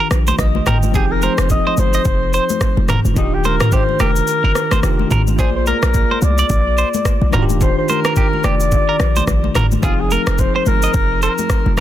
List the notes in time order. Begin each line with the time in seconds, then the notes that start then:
Already playing: D#3 D4 F4 G4
0.00 A#4
0.11 A#1, cross-stick, shaker
0.27 C5, high conga, shaker
0.39 A#1 D#5, kick, cross-stick, shaker
0.55 high conga
0.66 G1 A#4 G5, cross-stick, mid tom, low conga, shaker
0.83 high conga, shaker
0.92 F1 F3 C4 D#4 G4 G#4, kick, low conga, shaker
0.97 G#4
1.12 A#4
1.22 A#4 C5, high conga, shaker
1.38 F1, cross-stick, shaker
1.49 D#5, kick, shaker
1.67 C5 D#5, high conga
1.77 G1 C5, high conga, shaker
1.93 D#5, shaker
2.05 F1, kick, shaker
2.33 C5, shaker
2.49 high conga, shaker
2.61 kick, cross-stick, shaker
2.77 F1, high conga
2.88 A#4, cross-stick, mid tom, low conga, shaker
3.05 F1, high conga, shaker
3.14 D#1 D#3 D4 D#4 F4, kick, low conga, shaker
3.19 G4
3.34 G4
3.44 A#4 C5, high conga, shaker
3.60 A#4, cross-stick, mid tom, shaker
3.72 G4 C5, kick, shaker
3.89 high conga
3.99 F1 G4 A#4, cross-stick, high conga, shaker
4.16 shaker
4.27 shaker
4.44 G1 A#4
4.55 cross-stick, shaker
4.71 G1 C5, cross-stick, high conga, shaker
4.82 F1 D#3 D4 F4 G4, cross-stick, shaker
4.99 high conga
5.11 G#1 A#4, mid tom, low conga, shaker
5.27 high conga, shaker
5.36 A#1 A#3 F4 G#4 C5, kick, low conga, shaker
5.41 D5
5.56 C5
5.66 A#4, high conga, shaker
5.83 A#1, cross-stick, shaker
5.94 kick, shaker
6.11 C5, high conga
6.22 C2 D5, high conga, shaker
6.38 D5, shaker
6.49 A#1, kick, shaker
6.78 C5, shaker
6.94 high conga, shaker
7.05 kick, cross-stick, shaker
7.21 A#1, high conga
7.31 D#1 D#3 D4 F4 A#4, cross-stick, mid tom, low conga, shaker
7.36 F#4
7.42 G4
7.49 high conga, shaker
7.61 C5, kick, low conga, shaker
7.78 C5
7.88 A#4 C5, high conga, shaker
8.05 A#4, cross-stick, shaker
8.16 G4, kick, shaker
8.33 high conga
8.44 F1 G4 D5, cross-stick, high conga, shaker
8.60 shaker
8.72 kick, shaker
8.89 A#4
9.00 A#1, cross-stick, shaker
9.16 C5, high conga, shaker
9.27 A#1, kick, cross-stick, shaker
9.44 high conga
9.55 G1 A#4, cross-stick, mid tom, low conga, shaker
9.72 high conga, shaker
9.81 F1 F3 C4 D#4 F4 G#4, kick, low conga, shaker
9.86 G4
9.92 G#4
10.00 G#4
10.11 A#4, high conga, shaker
10.27 F1, cross-stick, shaker
10.38 C5, kick, shaker
10.55 C5, high conga
10.66 G1 A#4, high conga, shaker
10.82 D#5, shaker
10.94 F1, kick, shaker
11.22 A#4 C5, shaker
11.38 high conga, shaker
11.50 kick, cross-stick, shaker
11.66 F1, high conga
11.77 mid tom